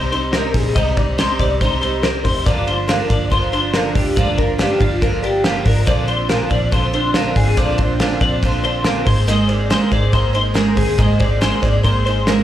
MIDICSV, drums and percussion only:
0, 0, Header, 1, 2, 480
1, 0, Start_track
1, 0, Tempo, 426743
1, 853, Time_signature, 4, 2, 24, 8
1, 13986, End_track
2, 0, Start_track
2, 0, Title_t, "Drums"
2, 140, Note_on_c, 9, 51, 58
2, 253, Note_off_c, 9, 51, 0
2, 370, Note_on_c, 9, 38, 103
2, 376, Note_on_c, 9, 51, 64
2, 483, Note_off_c, 9, 38, 0
2, 489, Note_off_c, 9, 51, 0
2, 611, Note_on_c, 9, 36, 85
2, 614, Note_on_c, 9, 46, 72
2, 614, Note_on_c, 9, 51, 65
2, 724, Note_off_c, 9, 36, 0
2, 727, Note_off_c, 9, 46, 0
2, 727, Note_off_c, 9, 51, 0
2, 853, Note_on_c, 9, 36, 109
2, 853, Note_on_c, 9, 44, 68
2, 853, Note_on_c, 9, 51, 78
2, 965, Note_off_c, 9, 44, 0
2, 966, Note_off_c, 9, 36, 0
2, 966, Note_off_c, 9, 51, 0
2, 1089, Note_on_c, 9, 51, 59
2, 1095, Note_on_c, 9, 36, 94
2, 1201, Note_off_c, 9, 51, 0
2, 1207, Note_off_c, 9, 36, 0
2, 1332, Note_on_c, 9, 51, 84
2, 1336, Note_on_c, 9, 38, 113
2, 1445, Note_off_c, 9, 51, 0
2, 1449, Note_off_c, 9, 38, 0
2, 1569, Note_on_c, 9, 36, 82
2, 1577, Note_on_c, 9, 51, 65
2, 1682, Note_off_c, 9, 36, 0
2, 1690, Note_off_c, 9, 51, 0
2, 1812, Note_on_c, 9, 36, 83
2, 1818, Note_on_c, 9, 51, 68
2, 1924, Note_off_c, 9, 36, 0
2, 1930, Note_off_c, 9, 51, 0
2, 2055, Note_on_c, 9, 51, 62
2, 2167, Note_off_c, 9, 51, 0
2, 2288, Note_on_c, 9, 38, 102
2, 2293, Note_on_c, 9, 51, 66
2, 2400, Note_off_c, 9, 38, 0
2, 2406, Note_off_c, 9, 51, 0
2, 2530, Note_on_c, 9, 36, 84
2, 2531, Note_on_c, 9, 46, 75
2, 2531, Note_on_c, 9, 51, 67
2, 2642, Note_off_c, 9, 36, 0
2, 2643, Note_off_c, 9, 46, 0
2, 2643, Note_off_c, 9, 51, 0
2, 2772, Note_on_c, 9, 36, 118
2, 2775, Note_on_c, 9, 44, 70
2, 2775, Note_on_c, 9, 51, 77
2, 2885, Note_off_c, 9, 36, 0
2, 2887, Note_off_c, 9, 44, 0
2, 2888, Note_off_c, 9, 51, 0
2, 3009, Note_on_c, 9, 51, 60
2, 3122, Note_off_c, 9, 51, 0
2, 3249, Note_on_c, 9, 51, 86
2, 3253, Note_on_c, 9, 38, 105
2, 3361, Note_off_c, 9, 51, 0
2, 3365, Note_off_c, 9, 38, 0
2, 3487, Note_on_c, 9, 38, 35
2, 3488, Note_on_c, 9, 36, 80
2, 3495, Note_on_c, 9, 51, 67
2, 3600, Note_off_c, 9, 36, 0
2, 3600, Note_off_c, 9, 38, 0
2, 3607, Note_off_c, 9, 51, 0
2, 3730, Note_on_c, 9, 36, 90
2, 3740, Note_on_c, 9, 51, 75
2, 3843, Note_off_c, 9, 36, 0
2, 3852, Note_off_c, 9, 51, 0
2, 3971, Note_on_c, 9, 51, 61
2, 4083, Note_off_c, 9, 51, 0
2, 4202, Note_on_c, 9, 38, 108
2, 4208, Note_on_c, 9, 51, 72
2, 4315, Note_off_c, 9, 38, 0
2, 4321, Note_off_c, 9, 51, 0
2, 4448, Note_on_c, 9, 36, 89
2, 4448, Note_on_c, 9, 46, 74
2, 4448, Note_on_c, 9, 51, 63
2, 4560, Note_off_c, 9, 36, 0
2, 4560, Note_off_c, 9, 46, 0
2, 4560, Note_off_c, 9, 51, 0
2, 4691, Note_on_c, 9, 36, 114
2, 4692, Note_on_c, 9, 44, 71
2, 4693, Note_on_c, 9, 51, 72
2, 4804, Note_off_c, 9, 36, 0
2, 4805, Note_off_c, 9, 44, 0
2, 4805, Note_off_c, 9, 51, 0
2, 4927, Note_on_c, 9, 51, 55
2, 4933, Note_on_c, 9, 36, 86
2, 5040, Note_off_c, 9, 51, 0
2, 5045, Note_off_c, 9, 36, 0
2, 5162, Note_on_c, 9, 51, 85
2, 5167, Note_on_c, 9, 38, 114
2, 5275, Note_off_c, 9, 51, 0
2, 5279, Note_off_c, 9, 38, 0
2, 5406, Note_on_c, 9, 36, 88
2, 5414, Note_on_c, 9, 51, 66
2, 5519, Note_off_c, 9, 36, 0
2, 5527, Note_off_c, 9, 51, 0
2, 5649, Note_on_c, 9, 36, 85
2, 5655, Note_on_c, 9, 51, 73
2, 5761, Note_off_c, 9, 36, 0
2, 5767, Note_off_c, 9, 51, 0
2, 5890, Note_on_c, 9, 51, 61
2, 6002, Note_off_c, 9, 51, 0
2, 6123, Note_on_c, 9, 38, 110
2, 6129, Note_on_c, 9, 51, 71
2, 6235, Note_off_c, 9, 38, 0
2, 6241, Note_off_c, 9, 51, 0
2, 6362, Note_on_c, 9, 46, 77
2, 6362, Note_on_c, 9, 51, 60
2, 6364, Note_on_c, 9, 36, 84
2, 6475, Note_off_c, 9, 46, 0
2, 6475, Note_off_c, 9, 51, 0
2, 6476, Note_off_c, 9, 36, 0
2, 6603, Note_on_c, 9, 44, 72
2, 6604, Note_on_c, 9, 51, 79
2, 6606, Note_on_c, 9, 36, 115
2, 6716, Note_off_c, 9, 44, 0
2, 6716, Note_off_c, 9, 51, 0
2, 6719, Note_off_c, 9, 36, 0
2, 6837, Note_on_c, 9, 51, 57
2, 6950, Note_off_c, 9, 51, 0
2, 7077, Note_on_c, 9, 51, 80
2, 7081, Note_on_c, 9, 38, 115
2, 7190, Note_off_c, 9, 51, 0
2, 7194, Note_off_c, 9, 38, 0
2, 7320, Note_on_c, 9, 36, 90
2, 7322, Note_on_c, 9, 51, 66
2, 7433, Note_off_c, 9, 36, 0
2, 7434, Note_off_c, 9, 51, 0
2, 7563, Note_on_c, 9, 36, 89
2, 7567, Note_on_c, 9, 51, 73
2, 7675, Note_off_c, 9, 36, 0
2, 7680, Note_off_c, 9, 51, 0
2, 7801, Note_on_c, 9, 51, 62
2, 7914, Note_off_c, 9, 51, 0
2, 8033, Note_on_c, 9, 38, 109
2, 8039, Note_on_c, 9, 51, 69
2, 8146, Note_off_c, 9, 38, 0
2, 8151, Note_off_c, 9, 51, 0
2, 8278, Note_on_c, 9, 36, 86
2, 8279, Note_on_c, 9, 46, 77
2, 8279, Note_on_c, 9, 51, 59
2, 8391, Note_off_c, 9, 36, 0
2, 8392, Note_off_c, 9, 46, 0
2, 8392, Note_off_c, 9, 51, 0
2, 8516, Note_on_c, 9, 44, 69
2, 8516, Note_on_c, 9, 51, 84
2, 8520, Note_on_c, 9, 36, 118
2, 8628, Note_off_c, 9, 44, 0
2, 8629, Note_off_c, 9, 51, 0
2, 8632, Note_off_c, 9, 36, 0
2, 8750, Note_on_c, 9, 51, 63
2, 8761, Note_on_c, 9, 36, 93
2, 8863, Note_off_c, 9, 51, 0
2, 8873, Note_off_c, 9, 36, 0
2, 8995, Note_on_c, 9, 51, 84
2, 8999, Note_on_c, 9, 38, 112
2, 9108, Note_off_c, 9, 51, 0
2, 9112, Note_off_c, 9, 38, 0
2, 9235, Note_on_c, 9, 38, 37
2, 9236, Note_on_c, 9, 36, 82
2, 9242, Note_on_c, 9, 51, 64
2, 9348, Note_off_c, 9, 36, 0
2, 9348, Note_off_c, 9, 38, 0
2, 9355, Note_off_c, 9, 51, 0
2, 9479, Note_on_c, 9, 36, 86
2, 9485, Note_on_c, 9, 51, 80
2, 9591, Note_off_c, 9, 36, 0
2, 9598, Note_off_c, 9, 51, 0
2, 9723, Note_on_c, 9, 51, 58
2, 9836, Note_off_c, 9, 51, 0
2, 9949, Note_on_c, 9, 38, 109
2, 9955, Note_on_c, 9, 51, 65
2, 10061, Note_off_c, 9, 38, 0
2, 10067, Note_off_c, 9, 51, 0
2, 10198, Note_on_c, 9, 36, 106
2, 10199, Note_on_c, 9, 46, 76
2, 10199, Note_on_c, 9, 51, 62
2, 10311, Note_off_c, 9, 36, 0
2, 10311, Note_off_c, 9, 46, 0
2, 10311, Note_off_c, 9, 51, 0
2, 10438, Note_on_c, 9, 44, 71
2, 10439, Note_on_c, 9, 51, 83
2, 10551, Note_off_c, 9, 44, 0
2, 10551, Note_off_c, 9, 51, 0
2, 10673, Note_on_c, 9, 51, 58
2, 10785, Note_off_c, 9, 51, 0
2, 10915, Note_on_c, 9, 51, 83
2, 10919, Note_on_c, 9, 38, 104
2, 11027, Note_off_c, 9, 51, 0
2, 11031, Note_off_c, 9, 38, 0
2, 11155, Note_on_c, 9, 36, 81
2, 11161, Note_on_c, 9, 51, 62
2, 11267, Note_off_c, 9, 36, 0
2, 11273, Note_off_c, 9, 51, 0
2, 11397, Note_on_c, 9, 36, 89
2, 11399, Note_on_c, 9, 51, 69
2, 11509, Note_off_c, 9, 36, 0
2, 11512, Note_off_c, 9, 51, 0
2, 11637, Note_on_c, 9, 51, 59
2, 11750, Note_off_c, 9, 51, 0
2, 11871, Note_on_c, 9, 38, 107
2, 11877, Note_on_c, 9, 51, 70
2, 11984, Note_off_c, 9, 38, 0
2, 11990, Note_off_c, 9, 51, 0
2, 12114, Note_on_c, 9, 46, 78
2, 12114, Note_on_c, 9, 51, 62
2, 12116, Note_on_c, 9, 36, 82
2, 12226, Note_off_c, 9, 46, 0
2, 12226, Note_off_c, 9, 51, 0
2, 12229, Note_off_c, 9, 36, 0
2, 12357, Note_on_c, 9, 44, 67
2, 12358, Note_on_c, 9, 51, 76
2, 12359, Note_on_c, 9, 36, 119
2, 12470, Note_off_c, 9, 44, 0
2, 12470, Note_off_c, 9, 51, 0
2, 12472, Note_off_c, 9, 36, 0
2, 12594, Note_on_c, 9, 51, 59
2, 12603, Note_on_c, 9, 36, 95
2, 12707, Note_off_c, 9, 51, 0
2, 12715, Note_off_c, 9, 36, 0
2, 12840, Note_on_c, 9, 51, 78
2, 12844, Note_on_c, 9, 38, 111
2, 12952, Note_off_c, 9, 51, 0
2, 12956, Note_off_c, 9, 38, 0
2, 13080, Note_on_c, 9, 36, 88
2, 13082, Note_on_c, 9, 38, 34
2, 13089, Note_on_c, 9, 51, 62
2, 13193, Note_off_c, 9, 36, 0
2, 13195, Note_off_c, 9, 38, 0
2, 13202, Note_off_c, 9, 51, 0
2, 13324, Note_on_c, 9, 36, 82
2, 13329, Note_on_c, 9, 51, 73
2, 13436, Note_off_c, 9, 36, 0
2, 13442, Note_off_c, 9, 51, 0
2, 13571, Note_on_c, 9, 51, 60
2, 13684, Note_off_c, 9, 51, 0
2, 13801, Note_on_c, 9, 38, 113
2, 13807, Note_on_c, 9, 51, 70
2, 13914, Note_off_c, 9, 38, 0
2, 13919, Note_off_c, 9, 51, 0
2, 13986, End_track
0, 0, End_of_file